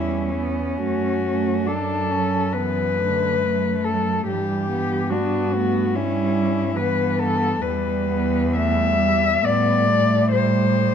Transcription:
Already playing: E2 G3 C#4 E4
0.36 B3
0.78 F#2 A3 F#4
1.24 A3
1.67 F#3 D4 A4
2.12 C#4
2.53 B3 B4
2.57 E3
2.98 D3 A3
3.43 F#3
3.85 A4
4.27 G2 G3 G4
4.31 E3
4.70 B3
5.10 B3 D4 F#4
5.53 A3 B3
5.95 G3 C#4 E4
6.77 E3 B3 B4
7.19 A4
7.62 E2 G3 B4
8.09 B3
8.56 G3 A3 E5
9.00 G3
9.43 A2 G3 B3 D5
9.87 A3
10.32 G3 C5
10.77 A3

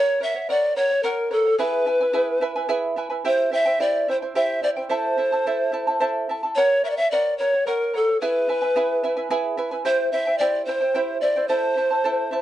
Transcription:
Already playing: A#4 C#5 F#5
0.20 A#4 C#5 E5 F#5
0.35 C#5 F#5
0.49 A#4 C#5 D5 F#5
0.76 A#4 C#5 F#5
0.90 C#5 F#5
1.03 A#4 C#5 F#5
1.31 A4 A#4 C#5 F#5
1.45 C#5 F#5
1.58 E4 G#4 B4 E5 G#5
1.86 E4 B4 E5 G#5
2.01 E4 B4 G#5
2.13 E4 G#4 B4 E5 G#5
2.41 E4 B4 E5 G#5
2.56 E4 B4 G#5
2.69 E4 G#4 B4 E5 G#5
2.96 E4 B4 E5 G#5
3.10 E4 B4 G#5
3.25 E4 G4 C5 E5 G5
3.51 E4 C5 E5 G5
3.65 E4 C5 G5
3.80 E4 G4 C5 D5 E5 G5
4.08 E4 C5 E5 G5
4.22 E4 C5 G5
4.35 E4 G4 C5 E5 G5
4.62 E4 C5 D5 E5 G5
4.76 E4 C5 G5
4.89 E4 A4 C5 E5 A5
5.18 E4 A4 E5 A5
5.32 E4 A4 A5
5.46 E4 A4 C5 E5 A5
5.72 E4 A4 E5 A5
5.87 E4 A4 A5
6.00 E4 A4 C5 E5 A5
6.29 E4 A4 E5 A5
6.43 E4 A4 A5
6.55 A#4 C#5 F#5
6.84 A#4 C#5 E5 F#5
6.90 D5
6.97 C#5 E5 F#5
7.11 A#4 C#5 D5 F#5
7.38 A#4 C#5 F#5
7.54 C#5 F#5
7.66 A#4 C#5 F#5
7.94 A4 A#4 C#5 F#5
8.08 C#5 F#5
8.21 E4 G#4 B4 E5 G#5
8.49 E4 B4 E5 G#5
8.62 E4 B4 G#5
8.76 E4 G#4 B4 E5 G#5
9.03 E4 B4 E5 G#5
9.17 E4 B4 G#5
9.30 E4 G#4 B4 E5 G#5
9.57 E4 B4 E5 G#5
9.71 E4 B4 G#5
9.85 E4 G4 C5 E5 G5
10.12 E4 C5 E5 G5
10.27 E4 C5 G5
10.38 E4 G4 C5 D5 E5 G5
10.65 E4 C5 E5 G5
10.81 E4 C5 G5
10.94 E4 G4 C5 E5 G5
11.21 E4 C5 D5 E5 G5
11.36 E4 C5 G5
11.48 E4 A4 C5 E5 A5
11.77 E4 C5 E5 A5
11.91 E4 C5 A5
12.04 E4 A4 C5 E5 A5
12.31 E4 C5 E5 A5

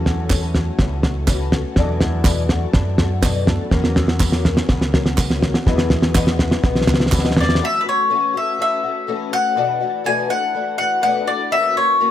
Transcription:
Already playing: E2 F#3 C#4 E4 A4
0.05 E2 A3 C#4 F#4, snare, floor tom
0.30 E3 A3 C#4 F#4, kick, snare, clap, floor tom, tambourine
0.55 A3 C#4 F#4, snare, floor tom
0.79 C#2 E3 A3 C#4 F#4, kick, snare, floor tom
1.03 A3 C#4 F#4, snare, floor tom
1.27 E3 A3 C#4 F#4, kick, snare, clap, floor tom, tambourine
1.52 A3 C#4 F#4, snare, floor tom
1.76 E2 B2 E3 F#3 A3 B3 D4 F#4 A4, kick, snare, floor tom
2.00 E2 E3 A3 D4 F#4, snare, floor tom
2.24 E2 B2 E3 A3 D4 F#4, kick, snare, clap, floor tom, tambourine
2.49 E3 A3 D4 F#4, snare, floor tom
2.73 F#2 E3 A3 D4 F#4, kick, snare, floor tom
2.98 E3 A3 D4 F#4, snare, floor tom
3.21 E2 B2 E3 A3 D4 F#4, kick, snare, clap, floor tom, tambourine
3.45 E3 F#3 A3 B3 D4 F#4 A4, snare, floor tom
3.71 E2 E3 F#3 A#3 C#4 F#4 A#4, kick, snare, floor tom
3.84 snare
3.95 E2 A#3 C#4 F#4, snare, floor tom
4.08 snare
4.19 E3 A#3 C#4 F#4, kick, snare, clap, floor tom, tambourine
4.32 snare
4.44 A#3 C#4 F#4, snare, floor tom
4.57 snare
4.69 C#2 E3 A#3 C#4 F#4, kick, snare, floor tom
4.81 snare
4.93 A#3 C#4 F#4, snare, floor tom
5.06 snare
5.17 E3 A#3 C#4 F#4, kick, snare, clap, floor tom, tambourine
5.30 snare
5.41 A#3 C#4 F#4, snare, floor tom
5.54 snare
5.65 E2 B2 E3 F#3 G#3 B3 E4 F#4 G#4, kick, snare, floor tom
5.78 snare
5.90 E2 E3 G#3 B3 F#4, snare, floor tom
6.02 snare
6.15 E2 B2 E3 G#3 B3 F#4, kick, snare, clap, floor tom, tambourine
6.27 snare
6.38 E3 G#3 B3 F#4, snare, floor tom
6.51 snare
6.63 B1 E3 G#3 B3 F#4, kick, snare, floor tom
6.75 snare
6.81 snare
6.87 C#2 E3 G#3 B3 F#4, snare, clap, floor tom
6.94 snare
7.00 snare
7.06 snare
7.11 D2 E2 B2 E3 G#3 B3 F#4, kick, snare, clap, floor tom, tambourine
7.19 snare
7.25 snare
7.31 snare
7.36 E2 E3 G#3 B3 F#4, snare, floor tom
7.40 D5, snare
7.49 snare
7.55 snare
7.61 E3 A3 C#4 F#4
7.65 E5
7.81 B4
7.85 A3 C#4 F#4 C#5
8.09 E3 A3 C#4 F#4
8.33 A3 C#4 F#4 E5
8.58 E3 A3 C#4 F#4 E5
8.83 A3 C#4 F#4
9.07 E3 A3 C#4 F#4
9.31 A3 C#4 F#4 F#5
9.55 E2 B2 E3 A3 D4 F#4
9.80 E3 A3 D4 F#4
10.04 E2 B2 E3 A3 D4 F#4 G#5
10.29 E3 A3 D4 F#4 F#5
10.53 E3 A3 D4 F#4
10.77 E3 A3 D4 F#4 F#5
11.01 E2 B2 E3 A3 D4 F#4 F#5
11.26 E3 A3 D4 F#4 D5
11.51 E3 A#3 C#4 F#4 E5
11.75 A#3 C#4 F#4 C#5
12.00 E3 A#3 C#4 F#4

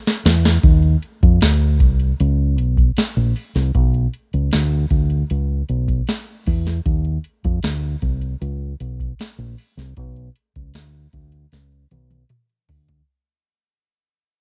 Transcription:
0.06 snare, closed hi-hat
0.25 E2, snare, open hi-hat
0.44 snare, closed hi-hat
0.63 D#2, kick, closed hi-hat
0.83 closed hi-hat
1.03 closed hi-hat
1.23 F2, kick, closed hi-hat
1.41 D2, snare, closed hi-hat
1.62 closed hi-hat
1.80 C2, kick, closed hi-hat
2.00 closed hi-hat
2.20 C#2, closed hi-hat
2.58 B1, closed hi-hat
2.77 kick, closed hi-hat
2.97 muted fingered electric bass stroke, snare, closed hi-hat
3.17 A#1, closed hi-hat
3.36 open hi-hat
3.55 C2, snare, closed hi-hat
3.75 B1, kick, closed hi-hat
3.94 closed hi-hat
4.14 closed hi-hat
4.33 C#2, closed hi-hat
4.51 D2, snare, closed hi-hat
4.72 closed hi-hat
4.91 D2, kick, closed hi-hat
5.10 closed hi-hat
5.30 C#2, closed hi-hat
5.69 B1, closed hi-hat
5.88 kick, closed hi-hat
6.07 snare, closed hi-hat
6.27 closed hi-hat
6.47 E2, kick, open hi-hat
6.66 snare, closed hi-hat
6.86 D#2, kick, closed hi-hat
7.05 closed hi-hat
7.24 closed hi-hat
7.44 F2, kick, closed hi-hat
7.63 D2, snare, closed hi-hat
7.84 closed hi-hat
8.02 C2, kick, closed hi-hat
8.21 closed hi-hat
8.41 C#2, closed hi-hat
8.80 B1, closed hi-hat
9.00 kick, closed hi-hat
9.19 muted fingered electric bass stroke, snare, closed hi-hat
9.38 A#1, closed hi-hat
9.58 open hi-hat
9.77 C2, snare, closed hi-hat
9.97 B1, kick, closed hi-hat
10.16 closed hi-hat
10.36 closed hi-hat
10.56 C#2, kick, closed hi-hat
10.74 D2, snare, closed hi-hat
10.94 closed hi-hat
11.13 D2, kick, closed hi-hat
11.32 closed hi-hat
11.52 C#2, snare, closed hi-hat
11.72 closed hi-hat
11.91 B1, closed hi-hat, high tom
12.10 closed hi-hat, high tom
12.29 closed hi-hat, mid tom
12.50 closed hi-hat
12.69 D2, floor tom, open hi-hat
12.88 closed hi-hat, floor tom

